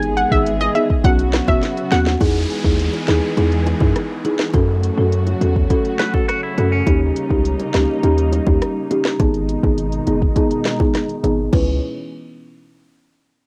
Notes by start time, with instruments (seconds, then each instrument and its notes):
Already playing: 808-style bass G#1, string section D#3 G#3 B3 G#4, marimba B3 D#4 G#4
0.02 closed hi-hat
0.17 synth pluck F#5, closed hi-hat
0.31 808-style bass G#1, marimba B3 D#4 G#4, synth pluck E5, kick
0.46 closed hi-hat
0.60 synth pluck D#5, closed hi-hat, high bongo
0.75 marimba B3 D#4 G#4, synth pluck E5, closed hi-hat, high bongo
0.90 kick
1.04 808-style bass B1, string section C#3 F#3 B3 F#4, marimba B3 C#4 F#4, synth pluck F#5, kick, closed hi-hat, high bongo
1.19 closed hi-hat
1.33 cross-stick, snare, closed hi-hat, high bongo
1.48 808-style bass E1, marimba B3 C#4 F#4, synth pluck E5, kick, high bongo
1.63 snare, closed hi-hat
1.77 closed hi-hat
1.91 808-style bass D#2, marimba B3 C#4 F#4, synth pluck F#5, snare, closed hi-hat, low bongo
2.06 snare
2.20 808-style bass E2, string section E3 G#3 B3 G#4, marimba D#4 E4 G#4, kick, closed hi-hat, high bongo, downlifter
2.50 closed hi-hat
2.64 808-style bass D#2, marimba D#4 E4 G#4, kick
2.79 closed hi-hat
2.93 closed hi-hat, high bongo
3.08 808-style bass D#2, marimba D#4 E4 G#4, cross-stick, snare, closed hi-hat, high bongo, low bongo
3.37 808-style bass E2, marimba D#4 E4 G#4, closed hi-hat, high bongo
3.52 closed hi-hat
3.66 closed hi-hat, high bongo
3.80 808-style bass F#2, marimba D#4 E4 G#4, kick, high bongo
3.96 cross-stick, closed hi-hat
4.25 marimba D#4 E4 G#4, closed hi-hat, low bongo
4.39 cross-stick, snare
4.54 808-style bass F#2, string section C#3 F#3 A3 F#4, marimba C#4 F#4 A4, kick, closed hi-hat, high bongo
4.83 closed hi-hat
4.97 808-style bass F#2, marimba C#4 F#4 A4
5.12 closed hi-hat
5.27 closed hi-hat, high bongo
5.41 808-style bass E2, marimba C#4 F#4 A4, closed hi-hat, high bongo, low bongo
5.56 kick
5.70 marimba C#4 F#4 A4, kick, closed hi-hat, high bongo
5.85 closed hi-hat
5.99 clean electric guitar B4, cross-stick, snare, closed hi-hat, high bongo
6.14 marimba C#4 F#4 A4, clean electric guitar A4, kick, high bongo
6.28 clean electric guitar F#4, cross-stick, closed hi-hat
6.43 clean electric guitar E4
6.57 808-style bass F#2, marimba C#4 F#4 A4, closed hi-hat, low bongo
6.72 clean electric guitar C#4
6.86 808-style bass D#2, string section G3 A#3 D#4, marimba C#4 D#4 G4, kick, closed hi-hat, high bongo
7.16 closed hi-hat
7.30 808-style bass C#2, marimba C#4 D#4 G4, kick
7.45 closed hi-hat
7.60 closed hi-hat, high bongo
7.74 808-style bass C#2, marimba C#4 D#4 G4, cross-stick, snare, closed hi-hat, high bongo, low bongo
8.03 808-style bass D#2, marimba C#4 D#4 G4, closed hi-hat, high bongo
8.18 closed hi-hat
8.32 closed hi-hat, high bongo
8.46 808-style bass D#2, marimba C#4 D#4 G4, kick, high bongo
8.62 cross-stick, closed hi-hat
8.91 marimba C#4 D#4 G4, closed hi-hat, low bongo
9.05 cross-stick, snare
9.20 808-style bass G#1, string section B2 D#3 G#3 D#4, marimba B3 D#4 G#4, kick, closed hi-hat, high bongo
9.34 closed hi-hat
9.49 closed hi-hat
9.63 808-style bass G#1, marimba B3 D#4 G#4, kick, high bongo
9.78 closed hi-hat
9.92 closed hi-hat
10.07 808-style bass F#1, marimba B3 D#4 G#4, closed hi-hat, high bongo, low bongo
10.22 kick
10.36 marimba B3 D#4 G#4, kick, closed hi-hat, high bongo
10.51 closed hi-hat
10.65 cross-stick, snare, closed hi-hat, high bongo
10.80 marimba B3 D#4 G#4, kick, high bongo
10.95 cross-stick, snare, closed hi-hat
11.09 closed hi-hat
11.23 808-style bass G#1, marimba B3 D#4 G#4, closed hi-hat, low bongo
11.52 808-style bass C#2, string section B2 E3 G#3 C#4, marimba C#4 E4 B4, kick, crash, high bongo